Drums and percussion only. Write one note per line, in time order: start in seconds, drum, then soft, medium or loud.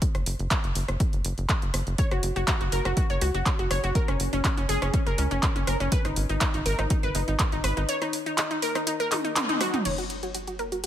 0.02 kick loud
0.02 closed hi-hat medium
0.15 cross-stick medium
0.15 closed hi-hat soft
0.26 open hi-hat loud
0.39 closed hi-hat soft
0.51 kick loud
0.51 clap loud
0.51 closed hi-hat medium
0.64 closed hi-hat soft
0.75 open hi-hat medium
0.88 cross-stick medium
0.88 closed hi-hat soft
1.00 kick loud
1.00 closed hi-hat medium
1.13 closed hi-hat soft
1.25 open hi-hat loud
1.38 closed hi-hat soft
1.49 kick loud
1.49 clap loud
1.49 closed hi-hat medium
1.62 closed hi-hat soft
1.74 cross-stick medium
1.74 open hi-hat medium
1.87 closed hi-hat soft
1.98 kick loud
1.98 closed hi-hat medium
2.11 cross-stick medium
2.11 closed hi-hat soft
2.23 open hi-hat loud
2.36 closed hi-hat soft
2.48 kick loud
2.48 clap loud
2.48 closed hi-hat medium
2.61 closed hi-hat soft
2.72 open hi-hat medium
2.85 cross-stick medium
2.85 closed hi-hat soft
2.97 kick loud
2.97 closed hi-hat medium
3.10 closed hi-hat soft
3.21 open hi-hat loud
3.35 closed hi-hat soft
3.46 kick loud
3.46 clap loud
3.46 closed hi-hat medium
3.59 closed hi-hat soft
3.71 cross-stick medium
3.71 open hi-hat medium
3.84 closed hi-hat soft
3.95 kick loud
3.95 closed hi-hat medium
4.08 cross-stick medium
4.08 closed hi-hat soft
4.20 open hi-hat loud
4.33 closed hi-hat soft
4.44 kick loud
4.44 clap loud
4.44 closed hi-hat medium
4.57 closed hi-hat soft
4.69 open hi-hat medium
4.82 cross-stick medium
4.82 closed hi-hat soft
4.94 kick loud
4.94 closed hi-hat medium
5.07 closed hi-hat soft
5.18 open hi-hat loud
5.31 closed hi-hat soft
5.43 kick loud
5.43 clap loud
5.43 closed hi-hat medium
5.56 closed hi-hat soft
5.67 cross-stick medium
5.67 open hi-hat medium
5.80 closed hi-hat soft
5.92 kick loud
5.92 closed hi-hat medium
6.05 cross-stick medium
6.05 closed hi-hat soft
6.16 open hi-hat loud
6.29 closed hi-hat soft
6.41 kick loud
6.41 clap loud
6.41 closed hi-hat loud
6.54 closed hi-hat soft
6.66 open hi-hat medium
6.79 cross-stick medium
6.79 closed hi-hat soft
6.90 kick loud
6.90 closed hi-hat medium
7.03 closed hi-hat soft
7.15 open hi-hat loud
7.28 closed hi-hat soft
7.39 kick loud
7.39 clap loud
7.39 closed hi-hat medium
7.52 closed hi-hat soft
7.64 cross-stick medium
7.64 open hi-hat medium
7.77 closed hi-hat soft
7.89 closed hi-hat loud
8.02 cross-stick medium
8.02 closed hi-hat soft
8.13 open hi-hat loud
8.26 closed hi-hat soft
8.38 clap loud
8.38 closed hi-hat loud
8.51 closed hi-hat soft
8.62 open hi-hat medium
8.75 cross-stick medium
8.75 closed hi-hat soft
8.87 closed hi-hat medium
9.00 closed hi-hat soft
9.12 clap medium
9.12 open hi-hat loud
9.12 high tom medium
9.25 closed hi-hat soft
9.36 clap loud
9.36 closed hi-hat medium
9.36 mid tom medium
9.49 closed hi-hat soft
9.49 mid tom medium
9.61 cross-stick medium
9.61 open hi-hat medium
9.74 closed hi-hat soft
9.74 mid tom medium
9.85 closed hi-hat medium
9.85 crash medium
9.98 closed hi-hat soft
10.10 closed hi-hat medium
10.23 closed hi-hat soft
10.35 closed hi-hat medium
10.47 closed hi-hat soft
10.59 closed hi-hat soft
10.72 closed hi-hat soft